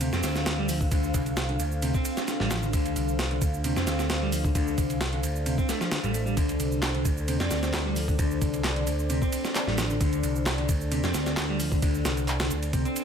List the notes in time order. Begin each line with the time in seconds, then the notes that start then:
Already playing: D4 A4 C5 F5
0.01 C3, ride, shaker
0.13 F2 C4, snare, shaker
0.23 D2, snare, ride, shaker
0.35 snare, shaker
0.46 snare, ride, shaker
0.58 G3
0.69 F3, open hi-hat, shaker
0.81 D3, kick, shaker
0.91 D2 D3, kick, ride, shaker
1.04 shaker
1.14 C2, kick, ride, shaker
1.26 ride, shaker
1.37 snare, ride, shaker
1.49 D3, ride
1.60 D2, ride, shaker
1.72 shaker
1.82 C3, ride, shaker
1.94 C4, kick, shaker
2.05 ride, shaker
2.17 snare, shaker
2.28 snare, ride, shaker
2.40 A1 G3, snare
2.51 F3, snare, ride, shaker
2.63 D3, shaker
2.73 D2 D3, kick, ride, shaker
2.85 ride, shaker
2.96 C2, ride, shaker
3.08 shaker
3.19 snare, ride, shaker
3.31 D3, ride
3.42 D2, kick, ride, shaker
3.54 shaker
3.64 C3, ride, shaker
3.76 F2 C4, snare, shaker
3.87 D2, snare, ride, shaker
3.99 snare, shaker
4.10 snare, ride, shaker
4.22 G3
4.32 F3, open hi-hat, shaker
4.44 D3, kick, shaker
4.55 D2 D3, kick, ride, shaker
4.67 shaker
4.78 C2, kick, ride, shaker
4.90 ride, shaker
5.01 snare, ride, shaker
5.13 D3, ride
5.23 D2, ride, shaker
5.36 shaker
5.46 C3, ride, shaker
5.58 C4, kick, shaker
5.69 A3, snare, ride, shaker
5.81 F3, snare, shaker
5.91 D3, snare, ride, shaker
6.03 A1 G3, ride, shaker
6.14 A3, ride, shaker
6.26 G3, shaker
6.36 D2 D3 D5, kick, ride, shaker
6.49 ride, shaker
6.60 C2, ride, shaker
6.72 shaker
6.82 snare, clap, ride, shaker
6.94 D3, ride
7.05 D2, kick, ride, shaker
7.17 shaker
7.28 C3, ride, shaker
7.40 F2 C4, snare, shaker
7.51 D2, snare, ride, shaker
7.63 snare, shaker
7.73 snare, clap, ride, shaker
7.86 G3
7.96 F3, open hi-hat, shaker
8.08 D3, kick, shaker
8.19 D2 D3, kick, ride, shaker
8.31 shaker
8.42 C2, kick, ride, shaker
8.54 ride, shaker
8.64 snare, clap, ride, shaker
8.76 D3, ride
8.87 D2, ride, shaker
8.99 shaker
9.10 C3, ride, shaker
9.22 C4, kick, shaker
9.32 ride, shaker
9.45 snare, shaker
9.55 snare, clap, ride, shaker
9.67 A1 G3, snare
9.78 F3, snare, ride, shaker
9.90 D3, shaker
10.01 D2 D3, kick, ride, shaker
10.13 ride, shaker
10.23 C2, ride, shaker
10.36 shaker
10.46 snare, clap, ride, shaker
10.58 D3, ride
10.69 D2, kick, ride, shaker
10.81 shaker
10.92 C3, ride, shaker
11.04 F2 C4, snare, shaker
11.14 D2, snare, ride, shaker
11.26 snare, shaker
11.37 snare, clap, ride, shaker
11.49 G3
11.60 F3, open hi-hat, shaker
11.72 D3, kick, shaker
11.82 D2 D3, kick, ride, shaker
11.95 shaker
12.05 C2, snare, ride, shaker
12.17 ride, shaker
12.28 clap, ride, shaker
12.40 D3, snare, ride, shaker
12.51 D2, ride, shaker
12.63 ride, shaker
12.73 C3, kick, ride, shaker
12.85 C4, ride, shaker
12.96 ride, shaker